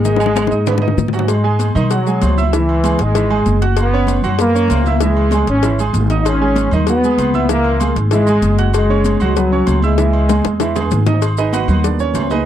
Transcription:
Already playing: upright bass G#1, trombone section G#3
0.05 grand piano D#3 D#4 D#5, high bongo, high conga, maracas
0.16 grand piano G#3 G#4, high bongo, high timbale
0.20 grand piano G#5, maracas
0.26 high bongo
0.36 high bongo, high conga, high timbale, maracas
0.47 upright bass G#2, grand piano D#4 D#5, high bongo
0.51 grand piano D#6, high conga, maracas
0.66 grand piano B3 B4 B5, low bongo, high conga, high timbale, maracas
0.78 grand piano D#4 D#5, low bongo
0.82 grand piano D#6, high conga, high timbale
0.88 low bongo
0.97 upright bass G#2, low bongo, high conga, maracas
1.08 low bongo
1.13 grand piano F#3 F#4 F#5, high conga, low timbale, maracas
1.19 low bongo
1.28 trombone section G#3, cowbell, high conga, low agogo, maracas
1.44 grand piano G#3 G#4 G#5, high conga
1.59 cowbell, high conga, low agogo, maracas
1.75 upright bass B2, grand piano D#3 D#4 D#5, high conga, low conga, low agogo, maracas
1.90 grand piano F#3 F#4 F#5, trombone section F#3, cowbell, high conga, maracas
2.06 grand piano G#3 G#4 G#5, high conga, maracas
2.21 upright bass C#2, cowbell, high conga, low timbale, low agogo, maracas
2.37 grand piano E4 E5 E6, high conga, low agogo, maracas
2.47 trombone section F#3
2.53 grand piano E3 E4 E5, trombone section E3, cowbell, high conga, maracas
2.69 low agogo
2.84 grand piano G#3 G#4 G#5, cowbell, high conga, low agogo, maracas
2.99 upright bass G#1, trombone section G#3, cowbell, high conga, maracas
3.14 grand piano E3 E4 E5, cowbell, high conga, low agogo, maracas
3.30 grand piano G#3 G#4 G#5, high conga, low agogo
3.46 upright bass F#1, cowbell, high conga, maracas
3.61 grand piano F#4 F#5 F#6, cowbell, high conga, maracas
3.77 trombone section B3, cowbell, low agogo, maracas
3.92 grand piano C#4 C#5 C#6, high conga
4.07 cowbell, high conga, low agogo, maracas
4.22 upright bass F#2, grand piano F#3 F#4 F#5, high conga, low conga, low agogo, maracas
4.39 trombone section A#3, grand piano B3 B4 B5, cowbell, maracas
4.53 grand piano C#4 C#5 C#6, high conga, maracas
4.68 upright bass C#2, cowbell, high conga, low timbale, low agogo, maracas
4.84 grand piano E4 E5 E6, high conga, low agogo, maracas
5.00 grand piano E3 E4 E5, trombone section G#3, cowbell, high conga, maracas
5.15 high conga, low agogo
5.31 grand piano G#3 G#4 G#5, cowbell, high conga, low agogo, maracas
5.47 upright bass G#1, trombone section C#4, cowbell, high conga, maracas
5.63 grand piano E3 E4 E5, cowbell, high conga, low agogo, maracas
5.78 grand piano G#3 G#4 G#5, high conga, low agogo, maracas
5.93 upright bass G#1, cowbell, high conga, maracas
6.09 grand piano D#4 D#5 D#6, cowbell, high conga, maracas
6.20 trombone section D#4
6.25 trombone section C#4, cowbell, low agogo, maracas
6.40 grand piano G#3 G#4 G#5, high conga
6.56 cowbell, high conga, low agogo, maracas
6.71 upright bass D#2, grand piano D#3 D#4 D#5, high conga, low conga, low agogo, maracas
6.87 grand piano F#3 F#4 F#5, trombone section B3, cowbell, high conga, low conga, maracas
7.03 grand piano G#3 G#4 G#5, high conga, maracas
7.18 upright bass C#2, cowbell, high conga, low agogo, maracas
7.34 grand piano E4 E5 E6, high conga, low agogo, maracas
7.49 grand piano E3 E4 E5, trombone section A#3, cowbell, maracas
7.64 high conga, low agogo
7.80 grand piano G#3 G#4 G#5, cowbell, high conga, low agogo, maracas
7.96 upright bass G#1, cowbell, maracas
8.11 grand piano E3 E4 E5, trombone section G#3, cowbell, low agogo, maracas
8.27 grand piano G#3 G#4 G#5, high conga, low agogo, maracas
8.42 upright bass F#1, cowbell, high conga, maracas
8.58 grand piano F#4 F#5 F#6, cowbell, high conga, maracas
8.74 trombone section G#3, cowbell, low agogo, maracas
8.89 grand piano C#4 C#5 C#6, high conga
9.04 cowbell, high conga, low agogo, maracas
9.20 upright bass C#2, grand piano F#3 F#4 F#5, high conga, low conga, low agogo, maracas
9.36 trombone section F#3, grand piano B3 B4 B5, cowbell, high conga, low conga, maracas
9.52 grand piano C#4 C#5 C#6, high conga
9.67 upright bass C#2, cowbell, high conga, low agogo, maracas
9.82 trombone section G#3, grand piano E4 E5 E6, high conga, low agogo, maracas
9.98 grand piano E3 E4 E5, cowbell, high conga, maracas
10.13 high conga, low agogo
10.28 grand piano G#3 G#4 G#5, cowbell, high bongo, high conga, low agogo, maracas
10.44 upright bass E2, cowbell, high bongo, high conga, maracas
10.60 grand piano E3 E4 E5, cowbell, high bongo, low agogo, maracas
10.75 grand piano G#3 G#4 G#5, low bongo, high conga, high timbale, low agogo, maracas
10.91 upright bass G#1, cowbell, low bongo, high conga, maracas
11.06 grand piano D#4 D#5 D#6, cowbell, low bongo, high conga, low timbale, maracas
11.22 cowbell, low agogo, maracas
11.37 grand piano D#4 G#4 B4 D#5, high conga, maracas
11.53 grand piano F#4 B4 D#5 F#5, cowbell, high conga, low agogo, maracas
11.68 upright bass D#2, grand piano F#3 A#3 B3, high conga, low conga, low agogo, maracas
11.84 grand piano D4 D5, cowbell, high conga, maracas
11.99 grand piano C#4 C#5, high conga, maracas
12.14 upright bass C#2, cowbell, high conga, low timbale, low agogo, maracas
12.30 grand piano D#4 G#4 B4 D#5, high conga, low agogo, maracas

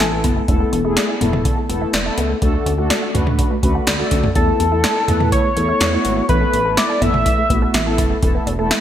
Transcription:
Already playing: analog synth lead A4
0.00 analog synth bass A1, synth arpeggio sound E5, snare, closed hi-hat
0.12 analog polysynth A3 B3 E4 A4, synth arpeggio sound A4
0.24 analog synth bass F#1, synth arpeggio sound B3, kick, closed hi-hat
0.36 synth arpeggio sound A3
0.48 analog synth bass E1, synth arpeggio sound D3, analog polysynth A3 B3 E4 A4, kick, closed hi-hat
0.60 synth arpeggio sound A3
0.73 analog synth bass E1, synth arpeggio sound B3, closed hi-hat
0.85 analog polysynth A3 B3 E4 G#4, synth arpeggio sound E4
0.97 synth arpeggio sound D5, snare, closed hi-hat
1.09 synth arpeggio sound E4
1.21 analog synth bass E1, analog polysynth A3 B3 E4 A4, synth arpeggio sound B3, closed hi-hat, mid tom
1.33 synth arpeggio sound A3, mid tom
1.45 synth arpeggio sound D3, kick, closed hi-hat
1.57 synth arpeggio sound A3
1.69 analog synth bass E1, analog polysynth A3 B3 E4 A4, synth arpeggio sound B3, closed hi-hat
1.81 synth arpeggio sound E4
1.93 analog synth bass E1, synth arpeggio sound D5, snare, closed hi-hat
2.06 analog polysynth A3 B3 E4 A4, synth arpeggio sound E4
2.18 analog synth bass C#2, synth arpeggio sound B3, closed hi-hat
2.30 synth arpeggio sound A3
2.42 analog synth bass D2, synth arpeggio sound D3, analog polysynth A3 D4 F#4 A4, kick, closed hi-hat
2.54 synth arpeggio sound A3
2.66 analog synth bass D2, synth arpeggio sound C#4, closed hi-hat
2.78 analog polysynth A3 D4 F#4 A4, synth arpeggio sound F#4
2.90 synth arpeggio sound D5, snare, closed hi-hat
3.02 synth arpeggio sound F#4
3.14 analog synth bass D2, analog polysynth A3 D4 F#4 B4, synth arpeggio sound C#4, closed hi-hat, mid tom
3.27 synth arpeggio sound A3, mid tom
3.39 synth arpeggio sound D3, kick, closed hi-hat
3.51 synth arpeggio sound A3
3.63 analog synth bass D2, analog polysynth A3 D4 F#4 B4, synth arpeggio sound C#4, kick, closed hi-hat
3.75 synth arpeggio sound F#4
3.87 analog synth bass D2, synth arpeggio sound D5, snare, closed hi-hat
3.99 analog polysynth A3 D4 F#4 A4, synth arpeggio sound F#4
4.11 analog synth bass D2, synth arpeggio sound C#4, kick, closed hi-hat
4.23 synth arpeggio sound A3, mid tom
4.35 analog synth bass E2, synth arpeggio sound D3, analog polysynth A3 B3 E4 A4, analog synth lead A4, kick, closed hi-hat
4.48 synth arpeggio sound A3
4.60 analog synth bass E2, synth arpeggio sound B3, closed hi-hat
4.72 analog polysynth A3 B3 E4 A4, synth arpeggio sound E4
4.84 synth arpeggio sound D5, snare, closed hi-hat
4.96 synth arpeggio sound E4
5.08 analog synth bass E2, analog polysynth A3 B3 E4 B4, synth arpeggio sound B3, closed hi-hat, mid tom
5.20 synth arpeggio sound A3, mid tom
5.32 synth arpeggio sound D3, analog synth lead C#5, kick, closed hi-hat
5.44 synth arpeggio sound A3
5.56 analog synth bass E2, analog polysynth A3 B3 E4 A4, synth arpeggio sound B3, closed hi-hat
5.69 synth arpeggio sound E4
5.80 analog synth bass E2, synth arpeggio sound D5, snare, closed hi-hat
5.93 analog polysynth A3 B3 E4 F#4, synth arpeggio sound E4
6.05 analog synth bass G#1, synth arpeggio sound B3, closed hi-hat
6.17 synth arpeggio sound A3
6.29 analog synth bass A1, synth arpeggio sound E3, analog polysynth A3 B3 E4 A4, analog synth lead B4, kick, closed hi-hat
6.41 synth arpeggio sound A3
6.53 analog synth bass A1, synth arpeggio sound B3, closed hi-hat
6.65 analog polysynth A3 B3 E4 A4, synth arpeggio sound A4
6.77 analog synth lead D5, synth arpeggio sound E5, snare, closed hi-hat
6.90 synth arpeggio sound A4
7.02 analog synth bass A1, analog polysynth A3 B3 E4 A4, synth arpeggio sound B3, analog synth lead E5, closed hi-hat, mid tom
7.14 synth arpeggio sound A3, mid tom
7.26 synth arpeggio sound E3, kick, closed hi-hat
7.38 synth arpeggio sound A3
7.50 analog synth bass A1, analog polysynth A3 B3 E4 F#4, synth arpeggio sound B3, kick, closed hi-hat
7.62 synth arpeggio sound A4
7.74 analog synth bass A1, synth arpeggio sound E5, snare, closed hi-hat
7.86 analog polysynth A3 B3 E4 A4, synth arpeggio sound A4
7.98 analog synth bass F#1, synth arpeggio sound B3, kick, closed hi-hat
8.11 synth arpeggio sound A3
8.23 analog synth bass E1, synth arpeggio sound E3, analog polysynth A3 B3 E4 A4, kick, closed hi-hat
8.35 synth arpeggio sound B3
8.47 analog synth bass E1, synth arpeggio sound D4, closed hi-hat
8.59 analog polysynth A3 B3 E4 A4, synth arpeggio sound A4
8.71 synth arpeggio sound E5, snare, closed hi-hat

